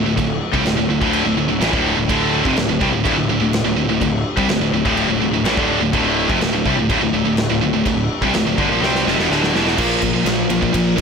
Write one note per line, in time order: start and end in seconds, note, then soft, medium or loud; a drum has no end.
0.00 0.15 D2 medium
0.00 9.73 F3 medium
0.00 9.73 A3 medium
0.00 9.73 D4 medium
0.00 2.05 A4 medium
0.04 0.17 D1 medium
0.04 0.15 A2 medium
0.16 0.40 D1 medium
0.16 0.36 D2 medium
0.16 0.36 A2 medium
0.16 kick medium
0.16 crash medium
0.52 0.65 C2 medium
0.52 0.63 C3 medium
0.52 0.63 G3 loud
0.52 kick loud
0.63 0.77 D1 medium
0.63 0.75 D2 medium
0.63 0.75 A2 medium
0.63 snare loud
0.63 crash medium
0.76 0.88 D1 medium
0.76 0.87 D2 medium
0.76 0.88 A2 medium
0.88 1.00 D1 medium
0.88 0.99 D2 medium
0.88 1.01 A2 medium
1.01 1.24 D1 loud
1.01 1.24 D2 loud
1.01 1.25 A2 medium
1.01 1.25 D3 loud
1.01 kick loud
1.13 crash medium
1.25 1.36 D1 medium
1.25 1.36 D2 medium
1.25 1.37 A2 medium
1.37 1.49 D1 medium
1.37 1.48 D2 medium
1.37 1.49 A2 medium
1.49 1.60 D1 medium
1.49 1.61 D2 medium
1.49 1.60 A2 medium
1.61 1.72 A1 medium
1.61 1.73 A2 medium
1.61 1.73 E3 medium
1.61 snare loud
1.61 crash medium
1.73 1.96 D1 loud
1.73 1.97 D2 medium
1.73 1.97 A2 medium
1.73 1.97 D3 medium
1.73 kick loud
1.97 2.08 D1 medium
1.97 2.09 D2 medium
1.97 2.09 A2 medium
2.08 2.43 D1 medium
2.08 2.45 D2 medium
2.08 2.45 A2 medium
2.08 2.46 D3 medium
2.08 9.73 G4 medium
2.08 kick loud
2.08 crash medium
2.45 2.56 F1 medium
2.45 2.57 F2 medium
2.45 2.57 C3 loud
2.45 kick loud
2.57 2.67 D1 medium
2.57 2.67 D2 medium
2.57 2.68 A2 medium
2.57 snare loud
2.57 crash medium
2.68 2.80 D1 medium
2.68 2.81 D2 medium
2.68 2.81 A2 medium
2.81 2.92 C2 loud
2.81 2.92 C3 medium
2.81 2.93 G3 loud
2.81 kick loud
2.93 3.04 D1 medium
2.93 3.03 D2 medium
2.93 3.04 A2 medium
3.05 3.15 D1 medium
3.05 3.16 D2 loud
3.05 3.16 A2 loud
3.05 kick loud
3.05 crash medium
3.15 3.27 D1 medium
3.15 3.28 D2 medium
3.15 3.29 A2 medium
3.27 3.38 D1 medium
3.27 3.40 D2 medium
3.27 3.40 A2 medium
3.39 3.62 D1 medium
3.39 3.60 D2 medium
3.39 3.61 A2 medium
3.53 snare loud
3.53 crash medium
3.63 3.74 D1 medium
3.63 3.76 D2 medium
3.63 3.77 A2 medium
3.75 3.87 D1 medium
3.75 3.88 D2 medium
3.75 3.88 A2 medium
3.88 3.99 D1 medium
3.88 3.99 D2 medium
3.88 3.99 A2 medium
4.00 4.23 D1 medium
4.00 4.20 D2 medium
4.00 4.20 A2 medium
4.00 kick medium
4.00 crash medium
4.36 4.48 C2 medium
4.36 4.48 C3 medium
4.36 4.48 G3 loud
4.36 kick loud
4.48 4.59 D1 medium
4.48 4.60 D2 medium
4.48 4.60 A2 medium
4.48 snare loud
4.48 crash medium
4.60 4.71 D1 medium
4.60 4.71 D2 medium
4.60 4.71 A2 medium
4.72 4.84 D1 medium
4.72 4.83 D2 medium
4.72 4.84 A2 medium
4.84 5.07 D1 medium
4.84 5.07 D2 loud
4.84 5.08 A2 loud
4.84 5.09 D3 loud
4.84 kick loud
4.97 crash medium
5.08 5.19 D1 medium
5.08 5.19 D2 medium
5.08 5.20 A2 medium
5.19 5.30 D1 medium
5.19 5.30 D2 medium
5.19 5.30 A2 medium
5.31 5.42 D1 medium
5.31 5.44 D2 medium
5.31 5.43 A2 medium
5.43 5.55 A1 loud
5.43 5.55 A2 medium
5.43 5.56 E3 medium
5.43 snare loud
5.43 crash medium
5.56 5.79 D1 medium
5.56 5.79 D2 medium
5.56 5.80 A2 medium
5.56 5.81 D3 loud
5.56 kick loud
5.80 5.92 D1 medium
5.80 5.91 D2 medium
5.80 5.93 A2 medium
5.92 6.27 D1 medium
5.92 6.28 D2 loud
5.92 6.29 A2 loud
5.92 6.29 D3 loud
5.92 kick loud
5.92 crash medium
6.29 6.39 F1 loud
6.29 6.40 F2 medium
6.29 6.41 C3 loud
6.29 kick loud
6.40 6.52 D1 medium
6.40 6.53 D2 medium
6.40 6.53 A2 medium
6.40 snare loud
6.40 crash medium
6.53 6.64 D1 medium
6.53 6.65 D2 medium
6.53 6.66 A2 medium
6.66 6.77 C2 loud
6.66 6.77 C3 medium
6.66 6.78 G3 loud
6.66 kick loud
6.77 6.88 D1 medium
6.77 6.90 D2 medium
6.77 6.90 A2 medium
6.90 6.99 D1 medium
6.90 7.02 D2 loud
6.90 7.02 A2 loud
6.90 kick loud
6.90 crash medium
7.00 7.11 D1 medium
7.00 7.13 D2 medium
7.00 7.14 A2 medium
7.12 7.24 D1 medium
7.12 7.25 D2 medium
7.12 7.26 A2 medium
7.26 7.48 D1 medium
7.26 7.45 D2 medium
7.26 7.45 A2 medium
7.37 snare loud
7.37 crash medium
7.49 7.61 D1 medium
7.49 7.62 D2 medium
7.49 7.62 A2 medium
7.62 7.73 D1 medium
7.62 7.73 D2 medium
7.62 7.73 A2 medium
7.74 7.85 D1 medium
7.74 7.85 D2 medium
7.74 7.85 A2 medium
7.86 8.08 D1 medium
7.86 8.05 D2 medium
7.86 8.05 A2 medium
7.86 kick medium
7.86 crash medium
8.21 8.33 C2 loud
8.21 8.33 C3 loud
8.21 8.34 G3 medium
8.21 kick loud
8.34 8.46 D1 medium
8.34 8.44 D2 medium
8.34 8.45 A2 medium
8.34 snare loud
8.34 crash medium
8.45 8.57 D1 medium
8.45 8.57 D2 medium
8.45 8.58 A2 medium
8.57 8.69 G1 loud
8.57 8.69 G2 medium
8.57 8.69 D3 loud
8.57 kick loud
8.69 8.82 A#1 medium
8.69 8.81 A#2 medium
8.69 8.81 F3 loud
8.81 9.04 C2 medium
8.81 9.05 C3 medium
8.81 9.05 G3 loud
8.81 9.05 C4 loud
8.81 snare medium
8.95 snare medium
9.06 9.17 F1 loud
9.06 9.17 F2 loud
9.06 9.18 C3 loud
9.06 snare medium
9.18 9.29 E1 loud
9.18 9.30 E2 medium
9.18 9.30 B2 loud
9.18 snare medium
9.30 9.53 D1 loud
9.30 9.54 D2 medium
9.30 9.54 A2 loud
9.30 9.54 D3 loud
9.30 snare medium
9.44 snare medium
9.54 9.76 E1 medium
9.54 9.77 E2 medium
9.54 9.78 B2 medium
9.54 9.78 E3 loud
9.54 snare loud
9.67 snare medium
9.78 10.15 A#1 medium
9.78 10.00 A#2 medium
9.78 10.01 F3 loud
9.78 11.01 A#3 medium
9.78 10.01 A#3 loud
9.78 11.01 D4 medium
9.78 11.01 F4 medium
9.78 11.01 A#4 medium
9.78 kick loud
9.78 crash loud
10.02 10.13 A#2 medium
10.02 10.13 F3 medium
10.02 kick medium
10.02 ride medium
10.14 10.24 A#2 medium
10.14 10.25 F3 medium
10.26 10.44 A#1 medium
10.26 10.47 A#2 medium
10.26 10.48 F3 loud
10.26 10.50 A#3 loud
10.26 snare loud
10.26 ride loud
10.50 10.68 A#1 loud
10.50 10.61 A#2 medium
10.50 10.60 F3 medium
10.50 10.73 A#3 medium
10.50 ride medium
10.61 10.72 A#2 medium
10.61 10.72 F3 medium
10.61 kick loud
10.73 11.01 A#1 loud
10.73 10.95 A#2 medium
10.73 10.95 F3 medium
10.73 11.01 A#3 loud
10.73 kick loud
10.73 ride loud
10.97 11.01 A#2 medium
10.97 11.01 F3 medium